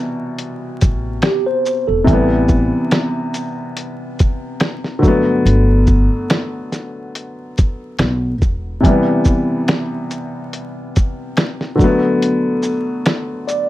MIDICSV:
0, 0, Header, 1, 5, 480
1, 0, Start_track
1, 0, Tempo, 845070
1, 1177, Time_signature, 4, 2, 24, 8
1, 7778, End_track
2, 0, Start_track
2, 0, Title_t, "Tine electric piano"
2, 0, Program_c, 0, 4
2, 699, Note_on_c, 0, 67, 77
2, 825, Note_off_c, 0, 67, 0
2, 832, Note_on_c, 0, 72, 79
2, 1059, Note_off_c, 0, 72, 0
2, 1065, Note_on_c, 0, 69, 70
2, 1296, Note_off_c, 0, 69, 0
2, 7653, Note_on_c, 0, 74, 74
2, 7778, Note_off_c, 0, 74, 0
2, 7778, End_track
3, 0, Start_track
3, 0, Title_t, "Felt piano"
3, 0, Program_c, 1, 0
3, 0, Control_c, 1, 64, 127
3, 0, Note_on_c, 1, 47, 80
3, 0, Note_on_c, 1, 48, 70
3, 0, Note_on_c, 1, 52, 75
3, 0, Note_on_c, 1, 55, 67
3, 1147, Note_off_c, 1, 48, 0
3, 1155, Note_off_c, 1, 52, 0
3, 1162, Note_on_c, 1, 48, 72
3, 1163, Note_off_c, 1, 55, 0
3, 1172, Note_off_c, 1, 47, 0
3, 1178, Note_on_c, 1, 52, 71
3, 1183, Control_c, 1, 64, 0
3, 1193, Note_on_c, 1, 55, 58
3, 1209, Note_on_c, 1, 59, 82
3, 1282, Control_c, 1, 64, 127
3, 2827, Note_off_c, 1, 48, 0
3, 2834, Note_on_c, 1, 50, 63
3, 2835, Note_off_c, 1, 52, 0
3, 2843, Note_off_c, 1, 55, 0
3, 2851, Note_off_c, 1, 59, 0
3, 2852, Note_on_c, 1, 54, 67
3, 2865, Control_c, 1, 64, 0
3, 2866, Note_on_c, 1, 57, 59
3, 2883, Note_on_c, 1, 59, 88
3, 2952, Control_c, 1, 64, 127
3, 4743, Note_off_c, 1, 50, 0
3, 4752, Note_off_c, 1, 54, 0
3, 4759, Note_off_c, 1, 57, 0
3, 4768, Note_off_c, 1, 59, 0
3, 5002, Note_on_c, 1, 48, 71
3, 5017, Note_on_c, 1, 52, 72
3, 5025, Control_c, 1, 64, 0
3, 5032, Note_on_c, 1, 55, 72
3, 5049, Note_on_c, 1, 59, 72
3, 5113, Control_c, 1, 64, 127
3, 6667, Note_off_c, 1, 48, 0
3, 6675, Note_off_c, 1, 52, 0
3, 6677, Note_on_c, 1, 50, 65
3, 6682, Note_off_c, 1, 55, 0
3, 6691, Note_off_c, 1, 59, 0
3, 6692, Note_on_c, 1, 54, 64
3, 6706, Control_c, 1, 64, 0
3, 6707, Note_on_c, 1, 57, 61
3, 6724, Note_on_c, 1, 59, 87
3, 6793, Control_c, 1, 64, 127
3, 7778, Note_off_c, 1, 50, 0
3, 7778, Note_off_c, 1, 54, 0
3, 7778, Note_off_c, 1, 57, 0
3, 7778, Note_off_c, 1, 59, 0
3, 7778, End_track
4, 0, Start_track
4, 0, Title_t, "Upright bass"
4, 0, Program_c, 2, 32
4, 468, Note_on_c, 2, 33, 77
4, 686, Note_off_c, 2, 33, 0
4, 1071, Note_on_c, 2, 28, 80
4, 1170, Note_off_c, 2, 28, 0
4, 1179, Note_on_c, 2, 33, 108
4, 1528, Note_off_c, 2, 33, 0
4, 2859, Note_on_c, 2, 31, 84
4, 3081, Note_off_c, 2, 31, 0
4, 3099, Note_on_c, 2, 31, 115
4, 3448, Note_off_c, 2, 31, 0
4, 4540, Note_on_c, 2, 35, 98
4, 4784, Note_off_c, 2, 35, 0
4, 4784, Note_on_c, 2, 28, 86
4, 5003, Note_off_c, 2, 28, 0
4, 7778, End_track
5, 0, Start_track
5, 0, Title_t, "Drums"
5, 219, Note_on_c, 9, 42, 72
5, 275, Note_off_c, 9, 42, 0
5, 462, Note_on_c, 9, 42, 55
5, 462, Note_on_c, 9, 82, 51
5, 467, Note_on_c, 9, 36, 105
5, 519, Note_off_c, 9, 42, 0
5, 519, Note_off_c, 9, 82, 0
5, 524, Note_off_c, 9, 36, 0
5, 693, Note_on_c, 9, 42, 65
5, 697, Note_on_c, 9, 26, 90
5, 700, Note_on_c, 9, 38, 99
5, 750, Note_off_c, 9, 42, 0
5, 754, Note_off_c, 9, 26, 0
5, 757, Note_off_c, 9, 38, 0
5, 942, Note_on_c, 9, 82, 46
5, 998, Note_off_c, 9, 82, 0
5, 1178, Note_on_c, 9, 36, 121
5, 1182, Note_on_c, 9, 42, 81
5, 1235, Note_off_c, 9, 36, 0
5, 1238, Note_off_c, 9, 42, 0
5, 1412, Note_on_c, 9, 82, 47
5, 1415, Note_on_c, 9, 36, 81
5, 1469, Note_off_c, 9, 82, 0
5, 1472, Note_off_c, 9, 36, 0
5, 1655, Note_on_c, 9, 42, 66
5, 1657, Note_on_c, 9, 26, 86
5, 1660, Note_on_c, 9, 38, 116
5, 1712, Note_off_c, 9, 42, 0
5, 1714, Note_off_c, 9, 26, 0
5, 1717, Note_off_c, 9, 38, 0
5, 1898, Note_on_c, 9, 42, 42
5, 1898, Note_on_c, 9, 82, 46
5, 1955, Note_off_c, 9, 42, 0
5, 1955, Note_off_c, 9, 82, 0
5, 2139, Note_on_c, 9, 42, 74
5, 2196, Note_off_c, 9, 42, 0
5, 2382, Note_on_c, 9, 42, 47
5, 2382, Note_on_c, 9, 82, 56
5, 2387, Note_on_c, 9, 36, 93
5, 2438, Note_off_c, 9, 42, 0
5, 2438, Note_off_c, 9, 82, 0
5, 2444, Note_off_c, 9, 36, 0
5, 2613, Note_on_c, 9, 42, 65
5, 2616, Note_on_c, 9, 26, 82
5, 2619, Note_on_c, 9, 38, 100
5, 2670, Note_off_c, 9, 42, 0
5, 2673, Note_off_c, 9, 26, 0
5, 2676, Note_off_c, 9, 38, 0
5, 2751, Note_on_c, 9, 38, 31
5, 2808, Note_off_c, 9, 38, 0
5, 2858, Note_on_c, 9, 36, 88
5, 2861, Note_on_c, 9, 82, 41
5, 2915, Note_off_c, 9, 36, 0
5, 2918, Note_off_c, 9, 82, 0
5, 3104, Note_on_c, 9, 42, 83
5, 3161, Note_off_c, 9, 42, 0
5, 3334, Note_on_c, 9, 82, 45
5, 3338, Note_on_c, 9, 36, 82
5, 3391, Note_off_c, 9, 82, 0
5, 3394, Note_off_c, 9, 36, 0
5, 3578, Note_on_c, 9, 42, 70
5, 3580, Note_on_c, 9, 26, 84
5, 3583, Note_on_c, 9, 38, 114
5, 3634, Note_off_c, 9, 42, 0
5, 3637, Note_off_c, 9, 26, 0
5, 3640, Note_off_c, 9, 38, 0
5, 3819, Note_on_c, 9, 38, 34
5, 3821, Note_on_c, 9, 42, 41
5, 3821, Note_on_c, 9, 82, 45
5, 3876, Note_off_c, 9, 38, 0
5, 3877, Note_off_c, 9, 42, 0
5, 3877, Note_off_c, 9, 82, 0
5, 4063, Note_on_c, 9, 42, 74
5, 4119, Note_off_c, 9, 42, 0
5, 4305, Note_on_c, 9, 42, 52
5, 4305, Note_on_c, 9, 82, 47
5, 4309, Note_on_c, 9, 36, 89
5, 4361, Note_off_c, 9, 42, 0
5, 4361, Note_off_c, 9, 82, 0
5, 4366, Note_off_c, 9, 36, 0
5, 4536, Note_on_c, 9, 42, 69
5, 4539, Note_on_c, 9, 26, 84
5, 4542, Note_on_c, 9, 38, 100
5, 4593, Note_off_c, 9, 42, 0
5, 4596, Note_off_c, 9, 26, 0
5, 4599, Note_off_c, 9, 38, 0
5, 4782, Note_on_c, 9, 36, 80
5, 4783, Note_on_c, 9, 82, 43
5, 4839, Note_off_c, 9, 36, 0
5, 4840, Note_off_c, 9, 82, 0
5, 5021, Note_on_c, 9, 36, 122
5, 5025, Note_on_c, 9, 42, 86
5, 5078, Note_off_c, 9, 36, 0
5, 5082, Note_off_c, 9, 42, 0
5, 5253, Note_on_c, 9, 82, 48
5, 5258, Note_on_c, 9, 36, 79
5, 5310, Note_off_c, 9, 82, 0
5, 5315, Note_off_c, 9, 36, 0
5, 5498, Note_on_c, 9, 42, 73
5, 5501, Note_on_c, 9, 26, 83
5, 5504, Note_on_c, 9, 38, 109
5, 5555, Note_off_c, 9, 42, 0
5, 5557, Note_off_c, 9, 26, 0
5, 5560, Note_off_c, 9, 38, 0
5, 5742, Note_on_c, 9, 42, 41
5, 5742, Note_on_c, 9, 82, 41
5, 5799, Note_off_c, 9, 42, 0
5, 5799, Note_off_c, 9, 82, 0
5, 5982, Note_on_c, 9, 42, 68
5, 6039, Note_off_c, 9, 42, 0
5, 6226, Note_on_c, 9, 42, 50
5, 6226, Note_on_c, 9, 82, 48
5, 6230, Note_on_c, 9, 36, 92
5, 6283, Note_off_c, 9, 42, 0
5, 6283, Note_off_c, 9, 82, 0
5, 6287, Note_off_c, 9, 36, 0
5, 6457, Note_on_c, 9, 42, 73
5, 6460, Note_on_c, 9, 26, 89
5, 6463, Note_on_c, 9, 38, 109
5, 6514, Note_off_c, 9, 42, 0
5, 6517, Note_off_c, 9, 26, 0
5, 6520, Note_off_c, 9, 38, 0
5, 6593, Note_on_c, 9, 38, 33
5, 6650, Note_off_c, 9, 38, 0
5, 6699, Note_on_c, 9, 36, 89
5, 6703, Note_on_c, 9, 82, 42
5, 6756, Note_off_c, 9, 36, 0
5, 6760, Note_off_c, 9, 82, 0
5, 6944, Note_on_c, 9, 42, 82
5, 7000, Note_off_c, 9, 42, 0
5, 7172, Note_on_c, 9, 82, 50
5, 7229, Note_off_c, 9, 82, 0
5, 7416, Note_on_c, 9, 42, 67
5, 7418, Note_on_c, 9, 26, 93
5, 7421, Note_on_c, 9, 38, 111
5, 7473, Note_off_c, 9, 42, 0
5, 7475, Note_off_c, 9, 26, 0
5, 7478, Note_off_c, 9, 38, 0
5, 7660, Note_on_c, 9, 42, 40
5, 7660, Note_on_c, 9, 82, 43
5, 7717, Note_off_c, 9, 42, 0
5, 7717, Note_off_c, 9, 82, 0
5, 7778, End_track
0, 0, End_of_file